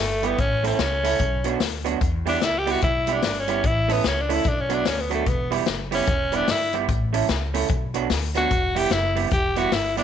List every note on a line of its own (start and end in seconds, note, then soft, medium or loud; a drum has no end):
0.00 0.32 G1 medium
0.00 0.28 A3 medium
0.23 0.35 G3 medium
0.23 0.36 B3 medium
0.23 0.41 B3 loud
0.23 0.36 E4 medium
0.23 0.36 G4 medium
0.23 hi-hat pedal medium
0.23 open hi-hat soft
0.23 open hi-hat medium
0.38 0.73 A1 loud
0.38 0.66 C#4 loud
0.38 kick loud
0.38 hi-hat pedal medium
0.38 open hi-hat medium
0.63 0.76 A3 medium
0.63 0.76 C#4 medium
0.63 1.66 C#4 loud
0.63 0.77 E4 medium
0.63 0.77 A4 loud
0.63 hi-hat pedal medium
0.63 open hi-hat medium
0.79 1.14 C#2 loud
0.79 snare loud
0.79 hi-hat pedal medium
0.79 open hi-hat medium
1.04 1.16 A3 medium
1.04 1.17 C#4 loud
1.04 1.17 E4 loud
1.04 1.17 A4 medium
1.04 hi-hat pedal medium
1.04 open hi-hat loud
1.19 1.55 B1 loud
1.19 kick loud
1.19 hi-hat pedal medium
1.19 open hi-hat medium
1.44 1.57 F#3 medium
1.44 1.57 B3 medium
1.44 1.58 D4 medium
1.44 1.58 F#4 medium
1.44 hi-hat pedal medium
1.44 open hi-hat loud
1.60 1.95 D2 loud
1.60 snare loud
1.60 hi-hat pedal medium
1.60 open hi-hat medium
1.84 1.98 F#3 medium
1.84 1.98 B3 medium
1.84 1.98 D4 medium
1.84 1.98 F#4 medium
1.84 hi-hat pedal medium
1.84 open hi-hat medium
2.01 2.36 E2 loud
2.01 kick loud
2.01 hi-hat pedal medium
2.01 open hi-hat medium
2.26 2.38 G3 medium
2.26 2.39 B3 medium
2.26 2.45 D4 loud
2.26 2.39 E4 medium
2.26 2.39 G4 loud
2.26 hi-hat pedal medium
2.26 open hi-hat medium
2.41 2.76 C#2 medium
2.41 2.60 E4 loud
2.41 snare loud
2.41 hi-hat pedal medium
2.41 open hi-hat medium
2.58 2.73 G4 loud
2.66 2.79 G3 medium
2.66 2.79 B3 medium
2.66 2.80 E4 loud
2.66 2.80 G4 loud
2.66 hi-hat pedal medium
2.66 open hi-hat medium
2.71 2.83 F#4 loud
2.82 3.17 B1 loud
2.82 3.14 E4 loud
2.82 kick loud
2.82 hi-hat pedal medium
2.82 open hi-hat medium
3.07 3.20 G3 medium
3.07 3.20 B3 medium
3.07 3.20 E4 medium
3.07 3.21 G4 medium
3.07 hi-hat pedal medium
3.07 open hi-hat loud
3.12 3.41 D4 loud
3.23 3.58 G1 loud
3.23 snare loud
3.23 hi-hat pedal medium
3.23 open hi-hat medium
3.40 3.68 C#4 medium
3.48 3.60 G3 medium
3.48 3.61 B3 medium
3.48 3.61 E4 medium
3.48 3.61 G4 medium
3.48 hi-hat pedal medium
3.48 open hi-hat soft
3.48 open hi-hat medium
3.64 3.98 A1 loud
3.64 3.93 E4 loud
3.64 kick loud
3.64 hi-hat pedal medium
3.64 open hi-hat medium
3.88 4.01 A3 medium
3.88 4.09 B3 medium
3.88 4.01 C#4 loud
3.88 4.01 E4 loud
3.88 4.02 A4 loud
3.88 hi-hat pedal medium
3.88 open hi-hat loud
4.04 4.39 C#2 loud
4.04 4.23 C#4 loud
4.04 snare loud
4.04 hi-hat pedal medium
4.04 open hi-hat medium
4.21 4.35 D4 medium
4.29 4.42 A3 medium
4.29 4.42 C#4 medium
4.29 4.42 E4 loud
4.29 4.42 A4 loud
4.29 hi-hat pedal medium
4.29 open hi-hat medium
4.34 4.49 E4 loud
4.44 4.80 B1 medium
4.44 4.62 D4 medium
4.44 kick loud
4.44 hi-hat pedal medium
4.44 open hi-hat medium
4.61 4.75 C#4 medium
4.69 4.82 F#3 medium
4.69 4.82 B3 medium
4.69 4.83 D4 medium
4.69 4.83 F#4 medium
4.69 hi-hat pedal medium
4.69 open hi-hat loud
4.74 4.89 D4 loud
4.85 5.20 D2 medium
4.85 5.02 C#4 medium
4.85 snare loud
4.85 hi-hat pedal medium
4.85 open hi-hat medium
5.01 5.14 B3 medium
5.10 5.23 F#3 medium
5.10 5.23 B3 medium
5.10 5.23 D4 medium
5.10 5.24 F#4 medium
5.10 hi-hat pedal medium
5.10 open hi-hat medium
5.14 5.29 A3 medium
5.26 5.61 E1 loud
5.26 5.52 B3 medium
5.26 kick loud
5.26 hi-hat pedal medium
5.26 open hi-hat medium
5.51 5.64 G3 medium
5.51 5.64 B3 medium
5.51 5.64 E4 loud
5.51 5.64 G4 medium
5.51 hi-hat pedal medium
5.51 open hi-hat medium
5.66 6.02 F#1 loud
5.66 snare loud
5.66 hi-hat pedal medium
5.66 open hi-hat medium
5.91 6.04 G3 medium
5.91 6.04 B3 medium
5.91 6.37 C#4 loud
5.91 6.05 E4 medium
5.91 6.05 G4 medium
5.91 hi-hat pedal medium
5.91 open hi-hat loud
6.06 6.42 E1 medium
6.06 kick loud
6.06 hi-hat pedal medium
6.06 open hi-hat medium
6.32 6.45 G3 medium
6.32 6.45 B3 medium
6.32 6.53 D4 loud
6.32 6.45 E4 medium
6.32 6.46 G4 medium
6.32 hi-hat pedal medium
6.32 open hi-hat loud
6.48 6.83 G1 loud
6.48 6.75 E4 loud
6.48 snare loud
6.48 hi-hat pedal medium
6.48 open hi-hat medium
6.73 6.86 G3 medium
6.73 6.86 B3 medium
6.73 6.86 E4 medium
6.73 6.86 G4 medium
6.73 hi-hat pedal medium
6.73 open hi-hat medium
6.89 7.23 A1 loud
6.89 kick loud
6.89 hi-hat pedal medium
6.89 open hi-hat medium
7.13 7.26 A3 medium
7.13 7.26 C#4 medium
7.13 7.26 E4 medium
7.13 7.26 A4 medium
7.13 hi-hat pedal medium
7.13 open hi-hat loud
7.29 7.64 C#2 loud
7.29 snare loud
7.29 hi-hat pedal medium
7.29 open hi-hat medium
7.54 7.67 A3 medium
7.54 7.67 C#4 medium
7.54 7.67 E4 medium
7.54 7.67 A4 loud
7.54 hi-hat pedal medium
7.54 open hi-hat loud
7.68 8.04 B1 loud
7.68 kick loud
7.68 hi-hat pedal medium
7.68 open hi-hat medium
7.94 8.07 F#3 medium
7.94 8.07 B3 medium
7.94 8.07 D4 loud
7.94 8.08 F#4 medium
7.94 hi-hat pedal medium
7.94 open hi-hat loud
8.10 8.45 D2 loud
8.10 snare loud
8.10 hi-hat pedal medium
8.10 open hi-hat medium
8.35 8.48 F#3 medium
8.35 8.48 B3 loud
8.35 8.48 D4 medium
8.35 8.48 F#4 loud
8.35 8.79 F#4 loud
8.35 hi-hat pedal medium
8.35 open hi-hat soft
8.35 open hi-hat medium
8.51 8.85 E1 loud
8.51 kick loud
8.51 hi-hat pedal medium
8.51 open hi-hat medium
8.75 8.88 G3 medium
8.75 8.88 B3 medium
8.75 8.88 E4 loud
8.75 8.89 G4 loud
8.75 8.94 G4 loud
8.75 hi-hat pedal medium
8.75 open hi-hat medium
8.90 9.25 F#1 loud
8.90 9.17 E4 loud
8.90 snare loud
8.90 hi-hat pedal medium
8.90 open hi-hat medium
9.15 9.28 G3 medium
9.15 9.29 B3 medium
9.15 9.29 E4 medium
9.15 9.29 G4 medium
9.15 hi-hat pedal medium
9.15 open hi-hat loud
9.31 9.66 E1 loud
9.31 9.59 G4 loud
9.31 kick loud
9.31 hi-hat pedal medium
9.31 open hi-hat medium
9.56 9.69 G3 medium
9.56 9.69 B3 medium
9.56 9.69 E4 medium
9.56 9.75 F#4 loud
9.56 9.70 G4 medium
9.56 hi-hat pedal medium
9.56 open hi-hat loud
9.72 10.03 G1 loud
9.72 9.97 E4 loud
9.72 snare loud
9.72 hi-hat pedal medium
9.72 open hi-hat medium
9.97 10.03 G3 medium
9.97 10.03 B3 loud
9.97 10.03 D4 loud
9.97 10.03 E4 loud
9.97 10.03 G4 loud
9.97 hi-hat pedal medium
9.97 open hi-hat medium